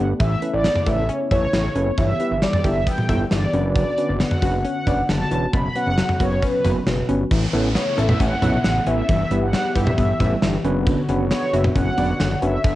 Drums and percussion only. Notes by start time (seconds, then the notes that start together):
0.20 kick, closed hi-hat
0.42 closed hi-hat
0.64 snare, closed hi-hat
0.76 mid tom
0.87 kick, closed hi-hat
1.09 closed hi-hat
1.31 kick, closed hi-hat, mid tom
1.53 snare, closed hi-hat
1.76 closed hi-hat
1.98 kick, closed hi-hat
2.20 closed hi-hat
2.42 snare, closed hi-hat
2.53 mid tom
2.64 kick, closed hi-hat
2.87 kick, closed hi-hat
2.98 mid tom
3.09 kick, closed hi-hat, mid tom
3.31 snare, closed hi-hat
3.53 closed hi-hat
3.75 kick, closed hi-hat
3.98 closed hi-hat
4.20 snare, closed hi-hat
4.31 mid tom
4.42 kick, closed hi-hat
4.65 closed hi-hat
4.87 kick, closed hi-hat, mid tom
5.09 snare, closed hi-hat
5.31 closed hi-hat
5.53 kick, closed hi-hat
5.75 closed hi-hat
5.98 snare, closed hi-hat
6.09 mid tom
6.20 kick, closed hi-hat, cowbell
6.42 kick, closed hi-hat
6.64 closed hi-hat, mid tom
6.87 snare, closed hi-hat
7.09 closed hi-hat
7.31 kick, crash
7.53 closed hi-hat, cowbell
7.75 snare, closed hi-hat
7.98 closed hi-hat, cowbell
8.09 mid tom
8.20 kick, closed hi-hat
8.42 closed hi-hat, mid tom
8.64 snare, closed hi-hat
8.87 closed hi-hat
9.09 kick, closed hi-hat
9.31 closed hi-hat
9.53 snare, closed hi-hat
9.75 kick, closed hi-hat
9.87 mid tom
9.98 kick, closed hi-hat
10.20 kick, closed hi-hat, mid tom
10.42 snare, closed hi-hat
10.64 closed hi-hat
10.87 kick, closed hi-hat
11.09 closed hi-hat
11.31 snare, closed hi-hat
11.54 closed hi-hat
11.64 mid tom
11.76 kick, closed hi-hat
11.98 closed hi-hat, mid tom
12.20 snare, closed hi-hat
12.42 closed hi-hat
12.64 kick, closed hi-hat